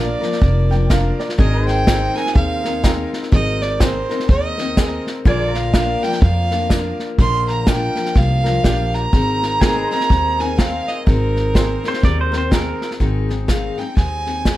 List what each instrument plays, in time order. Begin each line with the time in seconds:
Already playing: upright bass A#1, steel-string acoustic guitar F3 A#3 D4 A#4, honky-tonk piano D4 F4 A#4, pedal steel guitar D4 F4 A#4, fiddle D5
0.21 steel-string acoustic guitar F3 A#3 D4 A#4, snare
0.32 snare
0.40 upright bass F1, steel-string acoustic guitar F3 A#3 D4 A#4, kick, snare
0.70 steel-string acoustic guitar F3 A#3 D4 A#4, honky-tonk piano G5, snare
0.89 steel-string acoustic guitar F3 A#3 D4 A#4, honky-tonk piano D4 F4 A#4 F5, kick, snare, hi-hat pedal
1.20 honky-tonk piano D5, snare
1.29 snare
1.38 upright bass G#1, steel-string acoustic guitar G#3 C4 D#4 A#4, pedal steel guitar D4 G#4 A#4, fiddle D#5, kick, snare
1.58 pedal steel guitar D#4
1.66 pedal steel guitar C5, fiddle G5, snare
1.87 steel-string acoustic guitar G#3 C4 D#4 A#4, honky-tonk piano C4 G#4 A#4, kick, snare, hi-hat pedal
2.15 steel-string acoustic guitar D#4 A#4, fiddle G#5, snare
2.19 steel-string acoustic guitar C4
2.26 snare
2.34 upright bass D#2, steel-string acoustic guitar G#3 C4 D#4 A#4, fiddle F5, kick, snare
2.64 steel-string acoustic guitar C4 D#4 A#4, snare
2.83 steel-string acoustic guitar G#3 C4 D#4 A#4, honky-tonk piano C4 G#4 A#4, kick, snare, hi-hat pedal
3.13 snare
3.23 snare
3.32 upright bass G#1, steel-string acoustic guitar G#3 C4 D#4 A#4, fiddle D#5, kick, snare
3.62 fiddle D5, snare
3.80 steel-string acoustic guitar G#3 C4 D#4 A#4, honky-tonk piano C4 G#4 A#4, fiddle C5, kick, snare, hi-hat pedal
4.10 steel-string acoustic guitar C4 D#4 A#4, snare
4.20 snare
4.28 upright bass D#2, steel-string acoustic guitar G#3 C4 D#4 A#4, fiddle D#5, kick, snare
4.57 steel-string acoustic guitar C4 D#4 A#4, snare
4.77 steel-string acoustic guitar G#3 C4 D#4 A#4, honky-tonk piano C4 G#4 A#4, kick, snare, hi-hat pedal
5.07 snare
5.25 upright bass A#1, steel-string acoustic guitar A#2 D3 F3 A#3 D4 A#4, pedal steel guitar F4 G#4 D5, fiddle D5, kick, snare
5.52 pedal steel guitar A#4, fiddle F5, snare
5.73 steel-string acoustic guitar F3 A#3 D4 A#4, honky-tonk piano D4 F4 A#4, kick, snare, hi-hat pedal
6.03 steel-string acoustic guitar F3 A#3 D4 A#4, fiddle G5, snare
6.13 snare
6.21 upright bass F2, steel-string acoustic guitar F3 A#3 D4 A#4, fiddle F5, kick, snare
6.51 steel-string acoustic guitar F3 A#3 D4 A#4, snare
6.69 steel-string acoustic guitar F3 A#3 D4 A#4, honky-tonk piano D4 F4 A#4, kick, snare, hi-hat pedal
6.99 snare
7.18 upright bass A#1, steel-string acoustic guitar A#2 D3 F3 A#3 D4 A#4, fiddle C6, kick, snare
7.48 fiddle A#5, snare
7.66 steel-string acoustic guitar F3 A#3 D4 A#4, honky-tonk piano D4 F4 A#4, fiddle G5, kick, snare, hi-hat pedal
7.95 steel-string acoustic guitar F3 A#3 D4 A#4, snare
8.06 snare
8.15 upright bass C2, steel-string acoustic guitar F3 A#3 D4 A#4, fiddle F5, kick, snare
8.44 steel-string acoustic guitar F3 A#3 D4 A#4, snare
8.63 upright bass A#1, steel-string acoustic guitar F3 A#3 D4 A#4, honky-tonk piano D4 F4 G4, kick, snare, hi-hat pedal
8.94 fiddle A#5, snare
9.13 upright bass G#1, steel-string acoustic guitar G#3 C4 D#4 A#4, kick, snare
9.43 snare
9.61 steel-string acoustic guitar G#3 C4 D#4 A#4, honky-tonk piano C4 G#4 A#4, pedal steel guitar G#4 A#4 D#5, kick, snare, hi-hat pedal
9.88 steel-string acoustic guitar A#4, pedal steel guitar C5, fiddle A#5, snare
9.92 steel-string acoustic guitar C4 D#4
10.01 snare
10.09 upright bass D#2, steel-string acoustic guitar G#3 C4 D#4 A#4, kick, snare
10.38 steel-string acoustic guitar C4 D#4 A#4, fiddle G#5, snare
10.57 steel-string acoustic guitar G#3 C4 D#4 A#4, honky-tonk piano C4 G#4 A#4, fiddle F5, kick, snare, hi-hat pedal
10.88 fiddle D#5, snare
11.06 upright bass G#1, steel-string acoustic guitar G#3 C4 D#4 A#4, fiddle A#4, kick, snare
11.36 snare
11.55 steel-string acoustic guitar G#3 C4 D#4, honky-tonk piano C4 G#4 C5, kick, snare, hi-hat pedal
11.59 steel-string acoustic guitar A#4
11.84 steel-string acoustic guitar C4 D#4 A#4, snare
11.88 pedal steel guitar C5
11.94 snare
12.02 upright bass D#2, steel-string acoustic guitar G#3 C4 D#4 A#4, pedal steel guitar D5, kick, snare
12.21 pedal steel guitar C5
12.32 steel-string acoustic guitar C4 D#4 A#4, snare
12.38 pedal steel guitar C5
12.51 steel-string acoustic guitar G#3 C4 D#4, honky-tonk piano C4 G#4 A#4, pedal steel guitar A#4, kick, snare, hi-hat pedal
12.55 steel-string acoustic guitar A#4
12.81 snare
12.91 snare
13.00 upright bass G#1, steel-string acoustic guitar G#2 D#3 G#3 C4 D#4 G#4, kick, snare
13.29 steel-string acoustic guitar G#3 C4 D#4 G#4, snare
13.47 steel-string acoustic guitar G#2 D#3 G#3 C4 D#4, fiddle F5, kick, snare, hi-hat pedal
13.52 steel-string acoustic guitar G#4
13.77 steel-string acoustic guitar G#3 C4 D#4 G#4, fiddle G5, snare
13.96 upright bass D#2, steel-string acoustic guitar G#3 C4 D#4 G#4, fiddle G#5, kick, snare
14.26 steel-string acoustic guitar G#3 C4 D#4 G#4, snare
14.45 steel-string acoustic guitar G#2 D#3 G#3 C4 D#4 G#4, kick, snare, hi-hat pedal